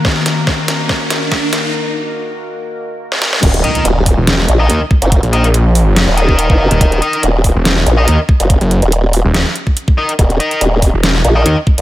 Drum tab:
CC |----------------|----------------|x---------------|----------------|
HH |--x---x---x---x-|----------------|xxxxx-o-x-x-x--x|xxxxx-o-x-x-x--x|
SD |o-o-o-o-o-o-o-o-|-------------ooo|--------o-------|--------o-------|
BD |o---o---o---o---|----------------|o-----o-------o-|o----------o-o--|

CC |----------------|----------------|----------------|
HH |xxxxx-o-x-x-x--x|xxxxx-o-x-x-x--x|xxxxx-o-x-x-x--x|
SD |--------o-------|--------o-------|--------o-------|
BD |o-----o-------o-|o----------o-o--|o-----o-------o-|